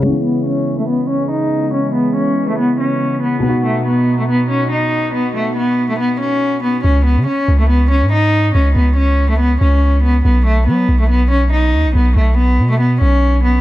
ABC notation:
X:1
M:4/4
L:1/16
Q:1/4=141
K:C#m
V:1 name="Cello"
C2 B,2 C3 A, B,2 C2 D4 | C2 B,2 C3 A, B,2 C4 B,2 | B,2 A,2 B,3 A, B,2 C2 D4 | B,2 A,2 B,3 A, B,2 C4 B,2 |
C2 B,2 C3 A, B,2 C2 D4 | C2 B,2 C3 A, B,2 C4 B,2 | B,2 A,2 B,3 A, B,2 C2 D4 | B,2 A,2 B,3 A, B,2 C4 B,2 |]
V:2 name="Grand piano"
[C,E,G,B,]16- | [C,E,G,B,]16 | [B,,B,DF]16- | [B,,B,DF]16 |
z16 | z16 | z16 | z16 |]
V:3 name="Analog synth pad" clef=bass
[C,E,G,B,]16- | [C,E,G,B,]16 | [B,,DF]16- | [B,,DF]16 |
z16 | z16 | z16 | z16 |]
V:4 name="808-style bass" clef=bass
z16 | z16 | z16 | z16 |
C,,3 C, z2 C,,4- C,, G,,4- G,, | C,,2 C,,8 C,,6 | B,,,4 F,2 B,,,8 D,, B,,, | B,,,2 B,,,4 B,,4 B,,,6 |]